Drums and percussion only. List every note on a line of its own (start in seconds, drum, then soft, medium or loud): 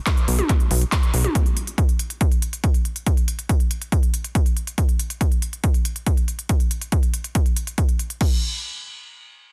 0.07 kick loud
0.07 clap loud
0.07 closed hi-hat medium
0.17 closed hi-hat soft
0.28 open hi-hat medium
0.39 closed hi-hat soft
0.39 mid tom medium
0.49 kick loud
0.49 clap soft
0.49 closed hi-hat medium
0.60 closed hi-hat soft
0.71 open hi-hat loud
0.82 closed hi-hat soft
0.92 kick loud
0.92 clap loud
0.92 closed hi-hat medium
1.03 closed hi-hat soft
1.14 open hi-hat medium
1.24 closed hi-hat soft
1.24 mid tom medium
1.35 kick loud
1.35 closed hi-hat medium
1.46 closed hi-hat soft
1.57 closed hi-hat medium
1.67 closed hi-hat soft
1.78 kick loud
1.78 closed hi-hat medium
1.89 closed hi-hat soft
1.99 closed hi-hat medium
2.10 closed hi-hat soft
2.21 kick loud
2.21 closed hi-hat medium
2.32 closed hi-hat soft
2.42 closed hi-hat medium
2.53 closed hi-hat soft
2.64 kick loud
2.64 closed hi-hat medium
2.74 closed hi-hat soft
2.85 closed hi-hat soft
2.96 closed hi-hat soft
3.07 kick loud
3.07 closed hi-hat medium
3.17 closed hi-hat soft
3.28 closed hi-hat medium
3.39 closed hi-hat soft
3.49 kick loud
3.49 closed hi-hat medium
3.60 closed hi-hat soft
3.71 closed hi-hat medium
3.82 closed hi-hat soft
3.92 kick loud
3.92 closed hi-hat medium
4.03 closed hi-hat soft
4.14 closed hi-hat medium
4.24 closed hi-hat soft
4.35 kick loud
4.35 closed hi-hat medium
4.46 closed hi-hat soft
4.57 closed hi-hat soft
4.67 closed hi-hat soft
4.78 kick loud
4.78 closed hi-hat medium
4.89 closed hi-hat soft
4.99 closed hi-hat medium
5.10 closed hi-hat soft
5.21 kick loud
5.21 closed hi-hat medium
5.32 closed hi-hat soft
5.42 closed hi-hat medium
5.53 closed hi-hat soft
5.64 kick loud
5.64 closed hi-hat medium
5.74 closed hi-hat soft
5.85 closed hi-hat medium
5.96 closed hi-hat soft
6.07 kick loud
6.07 closed hi-hat medium
6.17 closed hi-hat soft
6.28 closed hi-hat soft
6.39 closed hi-hat soft
6.49 kick loud
6.49 closed hi-hat medium
6.60 closed hi-hat soft
6.71 closed hi-hat medium
6.81 closed hi-hat soft
6.92 kick loud
6.92 closed hi-hat medium
7.03 closed hi-hat soft
7.14 closed hi-hat medium
7.24 closed hi-hat soft
7.35 kick loud
7.35 closed hi-hat medium
7.46 closed hi-hat soft
7.56 closed hi-hat medium
7.67 closed hi-hat soft
7.78 kick loud
7.78 closed hi-hat loud
7.89 closed hi-hat soft
7.99 closed hi-hat soft
8.10 closed hi-hat soft
8.21 kick loud
8.21 crash medium